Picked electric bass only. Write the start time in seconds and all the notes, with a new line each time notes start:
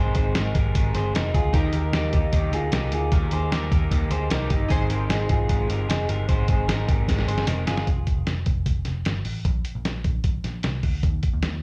Already playing: G#1
0.16 G#1
0.35 G#1
0.55 G#1
0.75 G#1
0.95 G1
1.14 F1
1.34 D2
1.54 D#2
1.74 D#2
1.93 D#2
2.14 D#2
2.33 D#2
2.52 D2
2.72 C2
2.92 D2
3.12 D#2
3.32 D#2
3.52 D#2
3.72 D#2
3.92 D#2
4.10 D2
4.30 C2
4.51 G1
4.70 G#1
4.90 G#1
5.09 G#1
5.30 G#1
5.49 G#1
5.70 G1
5.89 F1
6.09 G1
6.29 G#1
6.49 G#1
6.68 G#1
6.89 G#1
7.08 G#1
7.27 G1
7.47 F1
7.67 G1
7.87 F1
8.17 F1
8.27 F1
8.46 F1
8.66 F1
8.86 F1
9.06 G1
9.25 A1
9.45 A#1
9.75 A#1
9.86 A#1
10.05 A#1
10.24 A#1
10.44 A#1
10.65 C2
10.83 D2
11.03 D#2
11.34 D#2
11.43 D#2